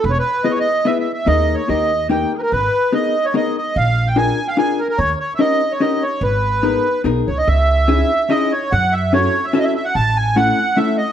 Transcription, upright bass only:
\new Staff \with { instrumentName = "Upright bass" } { \clef bass \time 3/4 \key gis \minor \tempo 4 = 146 e,,8 r2 r8 | dis,4 dis,2 | gis,,8 r2 r8 | ais,,2 r4 |
dis,8 r2 r8 | gis,,2 b,,8 cis,8 | \key cis \minor cis,2 r4 | fis,2 r4 |
a,,2 r4 | }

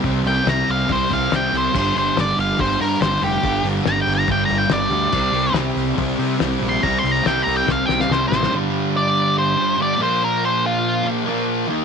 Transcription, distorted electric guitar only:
\new Staff \with { instrumentName = "Distorted electric guitar" } { \clef bass \time 4/4 \key g \minor \tempo 4 = 142 <c g c'>8 <g c'>8 <c g c'>4 <c g c'>8 <g c'>8 <c g c'>8 <g c'>8 | <g, d g>8 <d g>8 <g, d g>4 <g, d g>8 <d g>8 <g, d g>8 <d g>8 | <g, d g>8 <d g>8 <g, d g>4 <g, d g>8 <d g>8 <g, d g>8 <d g>8 | <c g c'>8 <g c'>8 <c g c'>4 <c g c'>8 <g c'>8 <c g c'>8 <g c'>8 |
<c g c'>8 <g c'>8 <c g c'>4 <c g c'>8 <g c'>8 <c g c'>8 <g c'>8 | <g, d g>2~ <g, d g>8 <g, d g>8 <g, d g>8 <bes, f bes>8~ | <bes, f bes>2 <bes, f bes>8 <bes, f bes>4 <ees bes ees'>8 | }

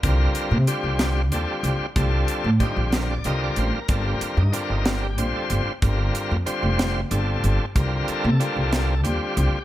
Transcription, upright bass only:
\new Staff \with { instrumentName = "Upright bass" } { \clef bass \time 6/8 \key c \dorian \tempo 4. = 62 c,8 r16 c16 r16 c,8. ees,16 r16 c,16 r16 | c,8 r16 a,16 r16 bes,,8. c,8 a,,16 r16 | g,,8 r16 g,16 r16 g,,8. bes,,16 r16 g,,16 r16 | g,,8 r16 f,16 r16 f,,8. g,,8 g,,16 r16 |
c,8 r16 c16 r16 c,8. ees,16 r16 c,16 r16 | }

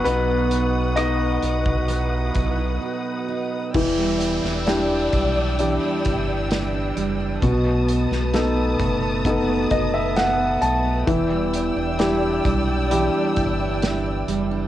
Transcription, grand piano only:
\new Staff \with { instrumentName = "Grand piano" } { \time 4/4 \key b \phrygian \tempo 4 = 66 << { b'4 <dis' dis''>4. r4. | \key e \minor r1 | r2 r8 dis''16 e''16 fis''8 a''8 | r1 | } \\ { <b dis' fis'>4. r2 r8 | e4 <d' e' g'>4 <d' e' g'>4 r4 | b,4 <b dis' a'>4 <b dis' a'>4 r4 | e4 <d' e' g'>4 <d' e' g'>4 r4 | } >> }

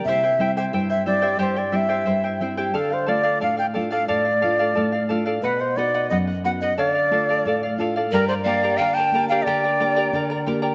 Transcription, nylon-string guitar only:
\new Staff \with { instrumentName = "Nylon-string guitar" } { \time 2/4 \key g \dorian \tempo 4 = 89 c8 <g c' e'>8 g,8 <g c' e'>8 | g,8 <g c' e'>8 g,8 <g c' e'>8 | d8 <a d' f'>8 a,8 <a d' f'>8 | a,8 <a d' f'>8 a,8 <a d' f'>8 |
b,8 <b dis' fis'>8 fis,8 <b dis' fis'>8 | d8 <a d' f'>8 a,8 <a d' f'>8 | g,8 <bes d' g'>8 d8 <bes d' g'>8 | d8 <bes d' g'>8 d8 <bes d' g'>8 | }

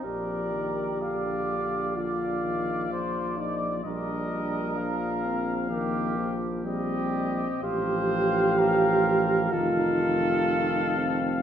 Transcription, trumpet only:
\new Staff \with { instrumentName = "Trumpet" } { \time 4/4 \key bes \major \tempo 4 = 64 bes'4 d''4 d''2 | bes'2 g'8 r8 g'4 | c''4 bes'4 a'2 | }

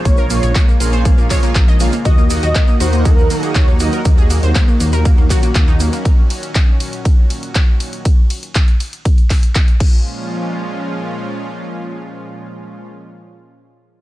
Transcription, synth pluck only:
\new Staff \with { instrumentName = "Synth pluck" } { \time 4/4 \key bes \minor \tempo 4 = 120 bes16 bes'16 bes16 des''16 bes16 bes16 bes16 c''16 bes16 bes16 des''16 bes16 bes16 ees''16 bes16 bes16 | ges'16 bes16 bes16 ges'16 bes16 bes16 ges'16 bes16 bes16 r16 bes16 bes16 ges'16 bes16 bes16 bes'16 | bes16 aes'16 bes16 c''16 bes16 bes16 bes16 bes'16 bes16 bes16 ges'16 bes16 bes16 ees'16 bes16 bes16 | r1 |
r1 | r1 | r1 | }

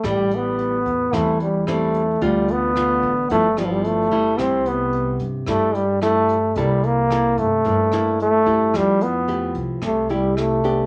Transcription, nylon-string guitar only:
\new Staff \with { instrumentName = "Nylon-string guitar" } { \time 4/4 \key a \minor \tempo 4 = 110 << { <g e'>4. r8 <g c' e'>8 r8 <g c' e'>8 r8 | <a c' f'>4 <a f'>8 r8 <f b e'>8 <f b e'>4 <g a e'>8~ | <g a e'>4. r8 <g a e'>8 r8 <g a e'>8 r8 | <bes e' a'>4 <bes e' a'>8 r8 <bes e' a'>8 <bes e' a'>4 <a e' g'>8~ |
<a e' g'>4 <a e' g'>4 r8 <a e' g'>4 <b d' g'>8 | } \\ { a,2 e2 | d2 g,2 | c2 g,2 | c2 g,2 |
f2 c2 | } >> }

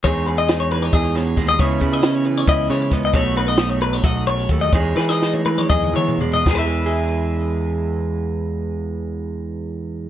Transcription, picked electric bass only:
\new Staff \with { instrumentName = "Picked electric bass" } { \clef bass \time 7/8 \key e \major \tempo 4 = 128 e,2 e,4 dis,8 | cis,8 cis4. cis,8 cis8 cis,8 | b,,2 b,,4 dis,8 | e,8 e4. e,8 e8 e,8 |
e,2.~ e,8~ | e,2.~ e,8 | }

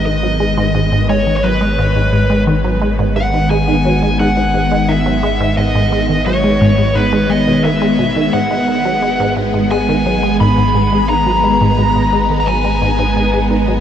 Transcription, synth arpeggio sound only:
\new Staff \with { instrumentName = "Synth arpeggio sound" } { \clef bass \time 4/4 \key gis \minor \tempo 4 = 87 dis16 fis16 gis16 gis,16 gis,16 gis,16 gis16 dis16 fis16 gis16 gis,16 gis,16 gis,16 gis16 dis16 fis16 | gis16 gis,16 gis,16 gis,16 gis16 dis16 fis16 gis16 gis,16 gis,16 gis,16 gis16 dis16 fis16 gis16 gis,16 | gis,16 gis,16 gis16 dis16 fis16 gis16 gis,16 gis,16 gis,16 gis16 gis16 b,16 dis16 gis16 b,16 dis16 | gis,16 gis16 dis16 fis16 gis16 gis,16 gis,16 gis,16 gis16 dis16 fis16 gis16 gis,16 gis,16 gis,16 gis16 |
dis16 fis16 gis16 gis,16 gis,16 gis,16 gis16 dis16 fis16 gis16 gis,16 gis,16 gis,16 gis16 dis16 fis16 | }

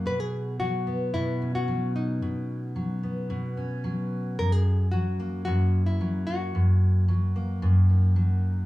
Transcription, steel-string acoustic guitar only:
\new Staff \with { instrumentName = "Steel-string acoustic guitar" } { \clef bass \time 4/4 \key b \major \tempo 4 = 111 b,4 fis8 b8 b,8 cis'8 fis4 | b,4 fis8 b8 b,8 cis'8 fis4 | fis,4 fis8 ais8 fis,4 fis4 | fis,4 fis8 ais8 fis,8 dis'8 fis4 | }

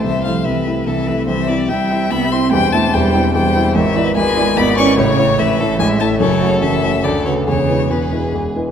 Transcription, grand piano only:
\new Staff \with { instrumentName = "Grand piano" } { \time 3/4 \key c \major \tempo 4 = 146 <c, c>8 <a e' e''>8 <c, c>8 <a e' e''>8 <c, c>8 <a e' e''>8 | <c, c>8 <c' e' e''>8 <c, c>8 <c' e' e''>8 <c, c>8 <c' e' e''>8 | <e,, e,>8 <c' e' e''>8 <e,, e,>8 <c' e' e''>8 <e,, e,>8 <c' e' e''>8 | \key e \mixolydian <gis,, gis,>8 <b e' d''>8 <gis,, gis,>8 <b e' d''>8 <gis,, gis,>8 <b e' d''>8 |
<a,, a,>8 <a e' cis''>8 <a,, a,>8 <a e' cis''>8 <a,, a,>8 <a e' cis''>8 | <fis,, fis,>8 <a fis' cis''>8 <fis,, fis,>8 <a fis' cis''>8 <d, d>8 <a fis' b'>8 | <e,, e,>8 <gis e' b'>8 <e,, e,>8 <gis e' b'>8 <e,, e,>8 <gis e' b'>8 | }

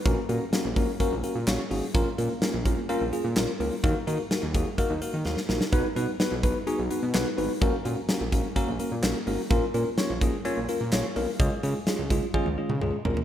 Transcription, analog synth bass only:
\new Staff \with { instrumentName = "Analog synth bass" } { \clef bass \time 4/4 \key bes \phrygian \tempo 4 = 127 bes,,16 r16 bes,16 r8 bes,,16 bes,,16 r8 bes,,16 r16 bes,16 bes,,16 r16 aes,,16 r16 | bes,,16 r16 bes,16 r8 bes,,16 bes,,16 r8 bes,,16 r16 bes,16 bes,,16 r16 des,16 r16 | ees,16 r16 ees16 r8 ees,16 ees,16 r8 ees,16 r16 ees16 ees,16 r16 bes,,16 r16 | b,,16 r16 b,16 r8 b,,16 b,,16 r8 b,,16 r16 b,16 b,,16 r16 aes,,16 r16 |
bes,,16 r16 bes,16 r8 bes,,16 bes,,16 r8 bes,,16 r16 bes,16 bes,,16 r16 aes,,16 r16 | bes,,16 r16 bes,16 r8 bes,,16 bes,,16 r8 bes,,16 r16 bes,16 bes,,16 r16 ces,16 r16 | des,16 r16 des16 r8 des,16 des,16 r8 des,16 r16 des16 des,16 r16 bes,,16 r16 | }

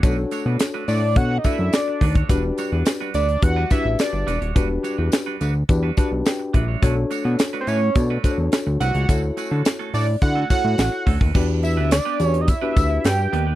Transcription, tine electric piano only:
\new Staff \with { instrumentName = "Tine electric piano" } { \time 4/4 \key e \dorian \tempo 4 = 106 << { r1 | r1 | r2 r8 a''8 g''8 e''8 | r1 |
r1 | r1 | } \\ { <d' fis' a' cis''>4. r8 <d' fis' a' cis''>16 r16 <d' fis' a' d''>4 r8 | <d' fis' g' b'>4. r8 <d' fis' g' b'>16 r16 <d' fis' g' b'>4 r8 | <d' fis' g' b'>4. r8 <d' fis' g' b'>16 r16 <d' fis' g' b'>4 r8 | <d' fis' a' cis''>4. r8 <d' fis' a' d''>16 r16 <d' fis' a' c'' cis''>4 r8 |
<e' fis' a' cis''>4. r8 <e' fis' a' d''>16 r16 <e' fis' a' cis''>4 r8 | <d' fis' g' b'>4 r8 <d' fis' g' d''>8 r16 <d' fis' g' b'>4~ <d' fis' g' b'>16 r8 | } >> }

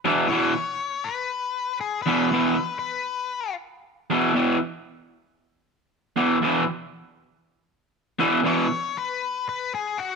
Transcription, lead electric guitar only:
\new Staff \with { instrumentName = "Lead electric guitar" } { \time 4/4 \key e \major \tempo 4 = 118 r8 cis''4. b'4. gis'8 | b'4. b'4. r4 | r1 | r1 |
r8 cis''4 b'4 b'8 gis'8 fis'8 | }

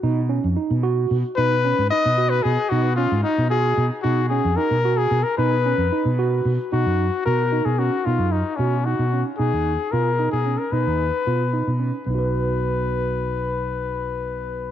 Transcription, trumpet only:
\new Staff \with { instrumentName = "Trumpet" } { \time 5/8 \key b \lydian \tempo 4 = 112 r2 r8 | b'4 dis''8. b'16 gis'8 | fis'8 eis'8 dis'8 gis'8. r16 | fis'8 gis'8 ais'8. gis'8 ais'16 |
b'4. r4 | fis'4 ais'8. gis'16 fis'8 | eis'8 dis'8 cis'8 fis'8. r16 | gis'4 ais'8. gis'8 ais'16 |
b'2 r8 | b'2~ b'8~ | b'2~ b'8 | }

